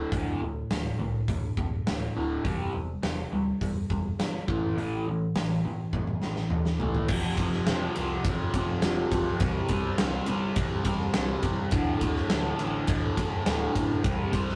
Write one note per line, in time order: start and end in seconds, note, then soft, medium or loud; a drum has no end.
0.00 0.11 D2 medium
0.00 0.11 A2 medium
0.00 0.11 D3 medium
0.12 0.32 D1 medium
0.12 0.40 D2 medium
0.12 0.40 A2 medium
0.12 0.40 D3 medium
0.12 kick loud
0.12 open hi-hat soft
0.42 0.61 D1 medium
0.42 0.68 D2 medium
0.42 0.68 A2 medium
0.70 0.90 D1 medium
0.70 0.97 D2 medium
0.70 0.97 A2 medium
0.70 snare loud
0.70 open hi-hat medium
0.99 1.20 C2 medium
0.99 1.25 D2 medium
0.99 1.26 A2 medium
1.28 1.48 D1 medium
1.28 1.54 D2 medium
1.28 1.55 A2 medium
1.28 kick medium
1.28 open hi-hat medium
1.57 1.77 D1 medium
1.57 1.84 D2 medium
1.57 1.84 A2 medium
1.57 kick medium
1.86 2.07 D1 medium
1.86 2.13 D2 medium
1.86 2.13 A2 medium
1.86 snare loud
1.86 open hi-hat medium
2.15 2.36 D1 medium
2.15 2.43 D2 medium
2.15 2.43 A2 medium
2.15 2.43 D3 medium
2.44 2.64 E1 medium
2.44 2.72 C3 medium
2.44 2.72 G3 medium
2.44 2.72 C4 medium
2.44 kick loud
2.44 open hi-hat soft
2.74 2.94 E1 medium
2.74 3.00 C3 medium
2.74 3.00 G3 medium
3.03 3.22 E1 medium
3.03 3.29 C3 medium
3.03 3.29 G3 medium
3.03 snare loud
3.03 open hi-hat soft
3.32 3.51 D1 medium
3.32 3.58 C3 medium
3.32 3.58 G3 medium
3.61 3.81 E1 medium
3.61 3.87 C3 medium
3.61 3.87 G3 medium
3.61 kick medium
3.61 open hi-hat soft
3.90 4.10 E1 medium
3.90 4.16 C3 medium
3.90 4.16 G3 medium
3.90 kick medium
4.19 4.39 G1 medium
4.19 4.45 C3 medium
4.19 4.45 G3 medium
4.19 snare loud
4.19 open hi-hat medium
4.48 4.68 A1 medium
4.48 4.75 A2 medium
4.48 4.75 E3 medium
4.48 4.76 A3 medium
4.48 kick loud
4.77 4.96 A1 medium
4.77 5.04 A2 medium
4.77 5.05 E3 medium
4.77 5.05 A3 medium
4.77 open hi-hat soft
5.06 5.26 A1 medium
5.06 5.33 A2 medium
5.06 5.33 E3 medium
5.35 5.55 A1 medium
5.35 5.62 A2 medium
5.35 5.62 E3 medium
5.35 snare loud
5.35 open hi-hat medium
5.65 5.84 G1 medium
5.65 5.91 A2 medium
5.65 5.91 E3 medium
5.93 6.13 A1 medium
5.93 6.20 A2 medium
5.93 6.20 E3 medium
5.93 kick medium
5.93 high tom medium
6.07 high tom soft
6.22 6.43 A1 medium
6.22 6.49 A2 medium
6.22 6.49 E3 medium
6.22 snare medium
6.36 snare medium
6.50 6.72 A1 medium
6.50 6.77 A2 medium
6.50 6.77 E3 medium
6.50 mid tom medium
6.65 snare medium
6.80 7.00 A1 medium
6.80 7.08 A2 medium
6.80 7.08 E3 medium
6.80 7.08 A3 loud
6.80 floor tom medium
6.95 floor tom medium
7.08 7.28 F1 medium
7.08 7.38 F2 medium
7.08 7.39 C3 loud
7.08 7.39 F3 loud
7.08 kick loud
7.08 crash loud
7.37 7.57 F1 medium
7.37 7.67 F2 medium
7.37 7.68 C3 medium
7.37 7.68 F3 loud
7.37 kick medium
7.37 ride medium
7.52 snare soft
7.66 7.95 F2 medium
7.66 7.87 F2 medium
7.66 7.96 C3 loud
7.66 7.97 F3 loud
7.66 snare loud
7.66 ride medium
7.96 8.16 C2 medium
7.96 8.24 F2 medium
7.96 8.24 C3 medium
7.96 8.25 F3 medium
7.96 ride medium
8.24 8.44 F1 medium
8.24 8.54 F2 medium
8.24 8.55 C3 loud
8.24 8.55 F3 medium
8.24 kick loud
8.24 ride loud
8.54 8.73 A1 medium
8.54 8.82 F2 medium
8.54 8.83 C3 loud
8.54 8.83 F3 loud
8.54 kick medium
8.54 ride medium
8.82 9.02 F1 medium
8.82 9.11 F2 medium
8.82 9.11 C3 medium
8.82 9.12 F3 medium
8.82 snare loud
8.82 ride loud
9.11 9.31 C2 medium
9.11 9.40 F2 medium
9.11 9.40 C3 medium
9.11 9.40 F3 loud
9.11 kick medium
9.11 ride medium
9.40 9.60 C2 medium
9.40 9.69 C3 medium
9.40 9.69 G3 loud
9.40 9.70 C4 medium
9.40 kick loud
9.40 ride loud
9.68 9.88 C2 medium
9.68 9.96 C3 medium
9.68 9.96 G3 medium
9.68 9.97 C4 loud
9.68 kick medium
9.68 ride medium
9.97 10.18 C2 medium
9.97 10.25 C3 loud
9.97 10.26 G3 loud
9.97 10.27 C4 loud
9.97 snare loud
9.97 ride loud
10.26 10.48 G1 medium
10.26 10.55 C3 medium
10.26 10.56 G3 medium
10.26 10.56 C4 medium
10.26 ride medium
10.56 10.75 C2 medium
10.56 10.83 C3 medium
10.56 10.84 G3 medium
10.56 10.85 C4 medium
10.56 kick loud
10.56 ride loud
10.84 11.04 E1 medium
10.84 11.12 C3 loud
10.84 11.13 G3 loud
10.84 11.13 C4 loud
10.84 kick medium
10.84 ride medium
11.13 11.33 C2 loud
11.13 11.42 C3 medium
11.13 11.42 G3 medium
11.13 11.43 C4 loud
11.13 snare loud
11.13 ride loud
11.43 11.62 G1 medium
11.43 11.71 C3 medium
11.43 11.71 G3 medium
11.43 11.71 C4 medium
11.43 kick medium
11.43 ride medium
11.71 11.91 D1 loud
11.71 12.01 D2 medium
11.71 12.01 A2 loud
11.71 12.02 D3 loud
11.71 kick loud
11.71 ride loud
12.01 12.20 D1 medium
12.01 12.29 D2 medium
12.01 12.30 A2 medium
12.01 12.31 D3 loud
12.01 kick medium
12.01 ride medium
12.16 snare soft
12.30 12.58 D2 medium
12.30 12.50 D2 loud
12.30 12.59 A2 loud
12.30 12.59 D3 loud
12.30 snare loud
12.30 ride loud
12.59 12.79 A1 medium
12.59 12.86 D2 medium
12.59 12.87 A2 medium
12.59 12.87 D3 medium
12.59 ride medium
12.87 13.07 D1 medium
12.87 13.17 D2 medium
12.87 13.17 A2 medium
12.87 13.17 D3 loud
12.87 kick loud
12.87 ride loud
13.17 13.36 F#1 medium
13.17 13.44 D2 medium
13.17 13.45 A2 medium
13.17 13.45 D3 loud
13.17 kick medium
13.17 ride medium
13.45 13.65 D1 medium
13.45 13.73 D2 medium
13.45 13.74 A2 medium
13.45 13.74 D3 loud
13.45 snare loud
13.45 ride loud
13.74 13.94 A1 medium
13.74 14.02 D2 medium
13.74 14.02 A2 medium
13.74 14.03 D3 medium
13.74 kick medium
13.74 ride medium
14.03 14.23 C2 loud
14.03 14.31 C3 loud
14.03 14.31 G3 loud
14.03 14.32 C4 loud
14.03 kick loud
14.03 ride loud
14.32 14.52 C2 medium
14.32 14.55 C3 medium
14.32 14.55 G3 loud
14.32 14.55 C4 medium
14.32 kick medium
14.32 ride medium
14.49 snare soft